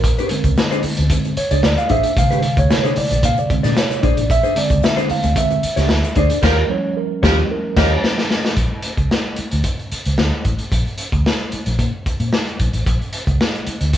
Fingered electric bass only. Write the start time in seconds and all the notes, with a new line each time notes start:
0.04 A#1
0.44 C#2
0.84 muted fingered electric bass stroke
0.99 D2
1.37 muted fingered electric bass stroke
1.51 C#2
1.64 D2
1.90 A1
2.17 A#1
2.57 D2
2.97 muted fingered electric bass stroke
3.11 A#1
3.23 A#2
3.50 muted fingered electric bass stroke
3.64 A#2
4.03 A#1
4.18 A1
4.30 A#1
4.70 C#2
5.10 muted fingered electric bass stroke
5.24 D2
5.63 muted fingered electric bass stroke
5.77 C#2
5.90 D2
6.16 D2
6.43 D#2
7.23 D#2
7.77 D#2
8.57 A#1
8.98 C#2
9.39 muted fingered electric bass stroke
9.53 D2
9.92 muted fingered electric bass stroke
10.06 C#2
10.18 D2
10.45 A1
10.72 A#1
11.13 D2
11.53 muted fingered electric bass stroke
11.67 A#1
11.79 A#2
12.06 muted fingered electric bass stroke
12.20 A#2
12.60 A#1
12.73 A1
12.87 A#1
13.27 C#2
13.67 muted fingered electric bass stroke
13.81 D2